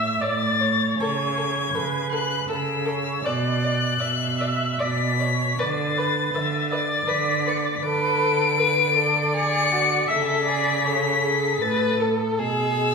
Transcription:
Already playing: cello A2, viola E5, violin E6
0.21 cello A2, violin C#5 A6, viola D5
0.60 violin C#5, viola C#5
0.99 cello C#3, violin A4 G#6
1.37 violin A4
1.74 cello C#3, violin A4, viola B4
2.12 violin A4 F#6
2.48 cello C#3, violin A4 E6, viola A4
2.86 violin A4, viola C#5
3.24 cello B2, viola D5, violin D5 F#6
3.64 violin D5
4.00 cello B2, violin D5, viola E5
4.41 violin D5
4.79 cello B2, violin D5 B6, viola D5
5.19 viola C#5, violin D5
5.59 cello D3, violin B4 A6, viola D5
5.98 viola B4, violin B4
6.34 cello D3, violin B4, viola E5
6.71 violin B4 A6, viola D5
7.07 cello D3, violin B4 B6
7.47 violin B4 C#7
7.57 violin B6
7.66 violin A6
7.75 violin B6
7.82 cello D3, violin A4 D7, viola B4
8.57 viola A4, violin B4
8.94 violin A4, viola D5
9.34 violin G#4 C#7
9.72 violin F#4
10.08 cello C#3, violin A4 B6, viola E5
10.45 violin G#4, viola D5
10.85 violin A4, viola C#5
11.23 viola G#4
11.61 cello A2, viola A4, violin B4 A6
12.00 violin A4
12.39 cello B2, violin G#4 E6, viola G#4

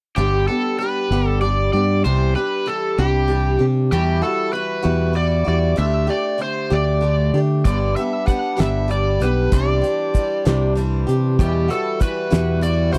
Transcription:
0.16 fingered electric bass G1, steel-string acoustic guitar G2 D3 G3 B3 D4 G4, electric slide guitar G4
0.47 steel-string acoustic guitar G3 B3 D4 G4, electric slide guitar A4
0.78 steel-string acoustic guitar G3 B3 D4 G4, electric slide guitar B4
1.10 fingered electric bass G1, steel-string acoustic guitar G2 D3 G3 B3 D4 G4
1.28 electric slide guitar A4
1.41 steel-string acoustic guitar G3 B3 D4, electric slide guitar D5
1.45 steel-string acoustic guitar G4
1.73 fingered electric bass G2, steel-string acoustic guitar B3 D4 G4, electric slide guitar D5
1.77 steel-string acoustic guitar G3
2.04 fingered electric bass C2, steel-string acoustic guitar C3 E3 G3 D4 G4, electric slide guitar C5
2.35 steel-string acoustic guitar G3 D4 G4, electric slide guitar B4
2.66 steel-string acoustic guitar E3 G3 D4 G4, electric slide guitar A4
2.98 fingered electric bass C2, steel-string acoustic guitar C3 E3 G3 D4 G4, electric slide guitar G4
3.28 steel-string acoustic guitar E3 G3 D4 G4
3.59 fingered electric bass C3, steel-string acoustic guitar G3 D4 G4
3.92 steel-string acoustic guitar E2 B2 E3 G3 E4, fingered electric bass E2, electric slide guitar G4
4.22 steel-string acoustic guitar E3 G3 E4 F#4, electric slide guitar A4
4.52 steel-string acoustic guitar E3 G3 E4 F#4, electric slide guitar B4
4.83 fingered electric bass E2, steel-string acoustic guitar E2 B2 E3 G3 E4 F#4
5.13 steel-string acoustic guitar E3 G3 E4 F#4, electric slide guitar D5
5.45 fingered electric bass E2, steel-string acoustic guitar G3 E4 F#4, electric slide guitar D5
5.49 steel-string acoustic guitar E3
5.76 fingered electric bass D2, steel-string acoustic guitar D3 A3 D4 G4, electric slide guitar E5
6.07 steel-string acoustic guitar A3 D4 G4, electric slide guitar D5
6.38 steel-string acoustic guitar D3 A3 D4 G4
6.42 electric slide guitar C5
6.70 fingered electric bass D2, steel-string acoustic guitar D3 A3 D4 G4, electric slide guitar D5
7.01 steel-string acoustic guitar D3 A3 D4 G4
7.34 fingered electric bass D3, steel-string acoustic guitar A3 D4 G4
7.65 fingered electric bass G1, steel-string acoustic guitar G2 D3 G3 B3 D4 G4, harmonium G3 D4 B4, electric slide guitar D5, kick, closed hi-hat
7.96 steel-string acoustic guitar B3 D4 G4, electric slide guitar E5, closed hi-hat
8.01 steel-string acoustic guitar G3
8.26 steel-string acoustic guitar G3 B3 D4 G4, electric slide guitar F#5, kick, closed hi-hat
8.57 fingered electric bass G1, steel-string acoustic guitar G2 D3 G3 B3 D4 G4, electric slide guitar E5, snare, closed hi-hat
8.88 steel-string acoustic guitar G3 B3 D4 G4, electric slide guitar D5, closed hi-hat
9.20 fingered electric bass B1, steel-string acoustic guitar B3 D4 G4, electric slide guitar B4, closed hi-hat
9.24 steel-string acoustic guitar G3
9.51 fingered electric bass C2, steel-string acoustic guitar C3 E3 G3 D4 G4, harmonium E3 C5, electric slide guitar D5, kick, closed hi-hat
9.82 steel-string acoustic guitar G3 D4 G4, closed hi-hat
10.14 steel-string acoustic guitar E3 G3 D4 G4, kick, closed hi-hat
10.45 fingered electric bass C2, steel-string acoustic guitar C3 E3 G3 D4 G4, snare, closed hi-hat
10.75 steel-string acoustic guitar E3 G3 D4 G4, closed hi-hat
11.07 fingered electric bass C3, steel-string acoustic guitar G3 D4 G4, closed hi-hat
11.38 fingered electric bass E2, steel-string acoustic guitar E2 B2 E3 G3 E4, harmonium G3 F#5, electric slide guitar G4, kick, closed hi-hat
11.68 steel-string acoustic guitar E3 G3 E4 F#4, electric slide guitar A4, closed hi-hat
12.00 steel-string acoustic guitar E3 G3 E4 F#4, electric slide guitar B4, kick, closed hi-hat
12.30 steel-string acoustic guitar E2 B2 E3 G3 E4 F#4, fingered electric bass E2, snare, closed hi-hat
12.61 steel-string acoustic guitar E3 G3 E4 F#4, electric slide guitar D5, closed hi-hat
12.92 fingered electric bass C#2, steel-string acoustic guitar E3 G3 E4 F#4, electric slide guitar C5, closed hi-hat

